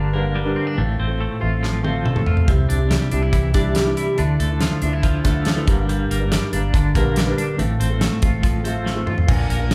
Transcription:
Already playing: G1 G2 D3 G3 A#3 D4 A#4
0.13 G2 D3 G3 A#3 D4 A#4
0.35 G3
0.45 G2 D3 G3 A#3 D4 A#4
0.56 C4
0.67 D4
0.75 A1 A2 A3 C4 F4 A4
0.99 A1 C4
1.07 C4 F4 A4
1.20 A3
1.39 A1 A3 C4 F4 A4
1.63 F3, snare
1.83 A3 C4 F4 A4, high tom
2.05 A3, mid tom
2.15 A3 C4 F4 A4, mid tom
2.26 F4, floor tom
2.37 floor tom
2.47 C2 C3 G3 D4 E4 G4, kick, closed hi-hat
2.69 C2 D4, closed hi-hat
2.79 D4 E4 G4
2.90 G3, snare, closed hi-hat
3.09 C2 G3 D4 E4 G4, closed hi-hat
3.22 E4
3.33 E3, kick, closed hi-hat
3.52 C3 G3 D4 E4 G4, kick, snare, closed hi-hat
3.75 G3, snare, closed hi-hat
3.85 C3 G3 D4 E4 G4
3.97 E4, closed hi-hat
4.16 D2 D3 F3 D4 E4 A4, closed hi-hat
4.40 D2 A3, closed hi-hat
4.49 D4 E4 A4
4.61 F3, snare, closed hi-hat
4.81 D2 F3 D4 E4 A4, closed hi-hat
4.93 E4
5.03 F3, kick, closed hi-hat
5.23 D3 F3 A3 D4 E4 A4, kick, snare, closed hi-hat
5.45 F3, snare, closed hi-hat
5.56 D3 F3 D4 E4 A4
5.66 G1 G2 D3 G3 A#3 D4 A#4, kick, closed hi-hat
5.89 G2, closed hi-hat
6.10 G1 A#3, closed hi-hat
6.20 G3 A#3 D4 A#4
6.32 G3, snare, closed hi-hat
6.52 G1 G3 A#3 D4 A#4, closed hi-hat
6.74 G1 D3, kick, closed hi-hat
6.94 A#1 G2 D3 G3 A#3 D4 A#4, kick, closed hi-hat
7.16 G3, snare, closed hi-hat
7.26 G2 D3 G3 A#3 D4 A#4
7.38 D4, closed hi-hat
7.57 A1 A2 A3 C4 F4 A4, closed hi-hat
7.80 A1 C4, closed hi-hat
7.90 C4 F4 A4
8.01 A3, snare, closed hi-hat
8.22 A1 A3 C4 F4 A4, kick, closed hi-hat
8.43 F3, kick, closed hi-hat
8.64 A3 C4 F4 A4, closed hi-hat
8.86 A3, snare
8.96 A3 C4 F4 A4
9.07 F4, mid tom
9.18 floor tom
9.28 A#1 A#2 D3 F3 A#3 D4 A#4, kick, crash
9.50 A#1 A#3, closed hi-hat
9.59 F3 A#3 D4 A#4
9.71 snare, closed hi-hat

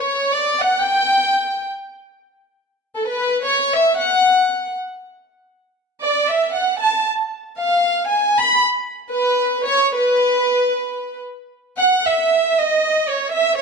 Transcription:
Already playing: C#5
0.33 D5
0.60 F#5
0.84 G5
2.96 A4
3.06 B4
3.45 C#5
3.74 E5
3.96 F#5
6.02 D5
6.29 E5
6.53 F#5
6.79 A5
7.59 F5
8.09 G#5
8.38 B5
9.10 B4
9.64 C#5
9.95 B4
11.79 F#5
12.06 E5
12.59 D#5
13.10 C#5
13.33 E5
13.57 C#5

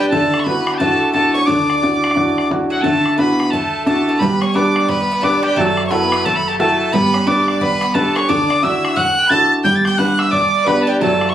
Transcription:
Already playing: D4 G4 B4
0.00 G3 G4
0.09 D2 D3 A3 A4 A5, bodhran
0.34 bodhran
0.40 C#6
0.44 B3 D4 E4 F#4 B4 B5, bodhran
0.67 bodhran
0.74 G5 A5
0.80 A3 D4 E4 F#4 A4, bodhran
0.92 bodhran
1.13 A3 D4 E4 F#4 A4 A5, bodhran
1.33 C#4 C#5 C#6
1.46 D2 D3 D4 D5 D6, bodhran
1.70 bodhran
1.82 D4 E4 F#4, bodhran
2.04 bodhran
2.11 bodhran
2.15 D4 E4 F#4, bodhran
2.28 bodhran
2.38 bodhran
2.50 D4 E4 F#4, bodhran
2.70 F#3 F#4 F#5
2.82 D2 D3 A3 A4 A5, bodhran
3.05 bodhran
3.17 B3 D4 E4 F#4 B4 B5, bodhran
3.40 bodhran
3.50 A3 A4 A5, bodhran
3.64 bodhran
3.84 A3 D4 E4 F#4 A4 A5, bodhran
4.09 A3
4.19 G1 G3 B3 B4 B5, bodhran
4.41 C#4 C#5 C#6, bodhran
4.54 D4 G4 B4 D5 D6, bodhran
4.76 bodhran
4.88 B3 B4 B5, bodhran
5.00 B3, bodhran
5.12 B3
5.21 D4 G4 B4 D5 D6, bodhran
5.43 G3 G4 G5
5.56 F#1 F#3 A3 A4 A5, bodhran
5.77 bodhran
5.86 C#5 C#6
5.90 B3 E4 F#4 A4 B4 B5, bodhran
6.02 B3
6.12 B3, bodhran
6.25 A3 A4 A5, bodhran
6.36 B5, bodhran
6.48 A3 G4 A4 A5
6.59 A3 E4 F#4 A4 A5, bodhran
6.93 G1 G3 B3 B4 B5, bodhran
7.14 C#4, bodhran
7.26 D4 G4 B4 D5 D6, bodhran
7.48 bodhran
7.61 B3 B4 B5, bodhran
7.71 bodhran
7.81 B3, bodhran
7.94 A3 D4 G4 A4 B4 A5, bodhran
8.15 C#4 C#5 C#6, bodhran
8.28 D2 D3 D4 D5 D6, bodhran
8.50 D4, bodhran
8.62 D4 E4 F#4 E5 E6, bodhran
8.85 bodhran
8.96 F#4 F#5 F#6, bodhran
9.08 bodhran
9.17 G5
9.27 D4 E4 F#4 A5 B5 A6, bodhran
9.32 A4
9.63 G1 G3 G4 G5 G6, bodhran
9.76 A6
9.85 G4 G5 G6, bodhran
9.98 D4 F#4 B4 F#5 F#6, bodhran
10.19 E5 E6, bodhran
10.31 D4 D5 D6, bodhran
10.42 bodhran
10.65 B3 D4 G4 B4 B5, bodhran
10.82 A5
10.87 G3 G4 G5
11.00 F#1 F#3 A3 A4 A5, bodhran
11.21 bodhran
11.29 C#6

